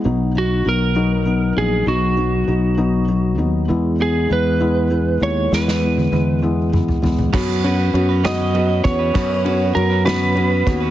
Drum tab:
CC |------------|------------|------------|------------|
RD |------------|------------|------------|------------|
SD |------------|------------|------------|oo----------|
T1 |------------|------------|------------|---oo-------|
T2 |------------|------------|------------|--------o---|
FT |------------|------------|------------|---------ooo|
BD |------------|------------|------------|------------|

CC |x-----------|------------|
RD |--x-x-x-x-x-|x-x-x-x-x-x-|
SD |------o-----|------o-----|
T1 |------------|------------|
T2 |------------|------------|
FT |------------|------------|
BD |o---------o-|o---------o-|